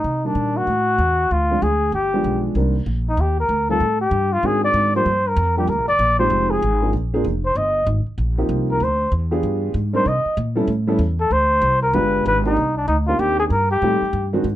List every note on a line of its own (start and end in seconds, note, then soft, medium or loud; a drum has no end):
0.00 0.27 D#4 medium
0.04 0.34 C3 medium
0.25 0.65 D#3 medium
0.25 0.65 G3 medium
0.25 0.65 A#3 soft
0.25 0.66 D4 medium
0.25 0.58 D4 medium
0.35 0.66 A#2 medium
0.57 1.33 F#4 medium
0.67 0.98 A2 medium
0.98 1.29 E2 medium
1.31 1.61 D2 medium
1.31 1.64 F4 medium
1.50 1.61 F3 medium
1.50 1.61 G#3 medium
1.50 1.61 C4 medium
1.50 1.61 D4 medium
1.62 1.92 D2 medium
1.62 1.94 G#4 medium
1.92 2.23 G1 medium
1.92 2.41 G4 medium
2.13 2.54 F3 medium
2.13 2.54 G#3 medium
2.13 2.54 B3 medium
2.13 2.54 D4 medium
2.24 2.54 B1 medium
2.55 2.86 C2 medium
2.55 2.74 D#3 medium
2.55 2.74 G3 medium
2.55 2.74 A#3 medium
2.55 2.74 C4 medium
2.55 2.74 D4 medium
2.86 3.17 A#1 medium
3.09 3.22 D#4 medium
3.17 3.48 D#2 medium
3.17 3.39 G4 medium
3.40 3.68 A#4 medium
3.49 3.80 D2 medium
3.69 3.80 D#3 medium
3.69 3.80 G3 medium
3.69 3.80 A3 medium
3.69 3.80 C4 medium
3.69 3.80 F4 medium
3.69 3.99 A4 medium
3.80 4.11 A2 medium
4.01 4.34 G4 medium
4.11 4.42 G2 medium
4.33 4.48 F4 medium
4.43 4.73 G#2 medium
4.43 4.90 D#3 medium
4.43 4.90 G#3 medium
4.43 4.91 C4 medium
4.43 4.91 D4 medium
4.43 4.91 F#4 medium
4.43 4.64 G#4 medium
4.64 4.93 D5 medium
4.74 5.04 G#2 medium
4.95 5.05 F3 medium
4.95 5.05 G3 medium
4.95 5.06 A#3 medium
4.95 5.06 D4 medium
4.95 5.06 G4 medium
4.95 5.29 C5 medium
5.05 5.36 G2 medium
5.28 5.57 A#4 medium
5.36 5.67 F2 loud
5.57 5.67 F3 medium
5.57 5.68 G3 medium
5.57 5.68 A#3 medium
5.57 5.68 D4 medium
5.57 5.71 G4 medium
5.57 5.68 G4 medium
5.67 5.78 D2 medium
5.67 5.87 A#4 medium
5.78 5.88 A#1 medium
5.88 5.98 G1 medium
5.88 6.17 D5 loud
5.99 6.29 A#1 medium
6.19 6.60 F3 medium
6.19 6.60 G#3 medium
6.19 6.60 C4 medium
6.19 6.60 D#4 medium
6.19 6.60 G4 medium
6.19 6.52 C5 medium
6.30 6.61 F1 medium
6.51 6.93 G#4 medium
6.62 6.93 G#1 medium
6.81 6.92 F3 medium
6.81 6.92 A#3 medium
6.81 6.92 C4 medium
6.81 6.92 D4 medium
6.81 6.92 G#4 medium
6.93 7.24 A#1 medium
7.13 7.24 F3 medium
7.13 7.24 A#3 medium
7.13 7.24 C4 medium
7.13 7.24 D4 medium
7.13 7.24 G#4 medium
7.24 7.55 F1 medium
7.45 7.59 C5 medium
7.55 7.86 G1 medium
7.55 7.88 D#5 medium
7.87 8.05 G#1 medium
8.06 muted upright bass stroke soft
8.18 8.48 A#1 medium
8.38 8.79 F3 medium
8.38 8.79 A#3 medium
8.38 8.79 C4 medium
8.38 8.79 D#4 medium
8.38 8.79 G4 medium
8.49 8.80 C2 medium
8.71 8.85 A#4 medium
8.80 9.11 D2 medium
8.80 9.13 C5 medium
9.12 9.42 E2 medium
9.31 9.72 B3 medium
9.31 9.73 D4 medium
9.31 9.73 F4 medium
9.31 9.72 G4 medium
9.31 9.73 G#4 medium
9.43 9.74 G2 medium
9.74 10.05 G#2 medium
9.93 10.04 G3 medium
9.93 10.04 C4 medium
9.93 10.04 D4 medium
9.93 10.05 D#4 medium
9.93 10.05 A#4 medium
9.93 10.09 C5 medium
10.06 10.24 C3 medium
10.06 10.38 D#5 medium
10.26 muted upright bass stroke soft
10.37 10.67 A#2 medium
10.55 10.67 G3 medium
10.55 10.67 B3 medium
10.55 10.67 C#4 medium
10.55 10.67 E4 medium
10.55 10.67 A4 medium
10.67 10.98 A2 medium
10.87 10.98 G3 medium
10.87 10.99 B3 medium
10.87 10.99 C#4 medium
10.87 10.99 E4 medium
10.87 10.99 A4 medium
10.99 11.30 E2 medium
11.20 11.34 A4 medium
11.31 11.61 D2 medium
11.31 11.82 C5 loud
11.62 11.92 C2 medium
11.82 11.96 A#4 medium
11.93 12.24 G1 medium
11.93 12.41 G#3 medium
11.93 12.41 B3 medium
11.93 12.41 D4 medium
11.93 12.41 F4 medium
11.93 12.41 G4 medium
11.93 12.26 B4 medium
12.26 12.56 G#1 medium
12.26 12.39 B4 medium
12.45 12.56 A#3 medium
12.45 12.56 C4 medium
12.45 12.56 D4 medium
12.45 12.75 D#4 medium
12.45 12.56 D#4 medium
12.45 12.56 G4 medium
12.57 12.87 C2 medium
12.77 12.87 D4 medium
12.88 13.18 D2 medium
12.88 12.97 D#4 medium
13.07 13.49 A#3 medium
13.07 13.49 C4 medium
13.07 13.49 D4 medium
13.07 13.49 D#4 medium
13.07 13.21 F4 medium
13.07 13.49 G4 medium
13.19 13.50 D#2 medium
13.19 13.39 G4 loud
13.40 13.45 G#4 medium
13.50 13.81 G2 medium
13.50 13.70 A#4 medium
13.71 14.30 G4 medium
13.82 14.00 A2 medium
13.82 14.00 G3 medium
13.82 14.00 A3 medium
13.82 14.00 C4 medium
13.82 14.01 D#4 medium
13.82 14.01 G4 medium
14.02 muted upright bass stroke soft
14.13 14.44 G2 medium
14.33 14.44 D#3 medium
14.33 14.44 G#3 medium
14.33 14.44 C4 medium
14.33 14.44 D4 medium
14.33 14.44 F#4 medium
14.44 14.56 G#2 medium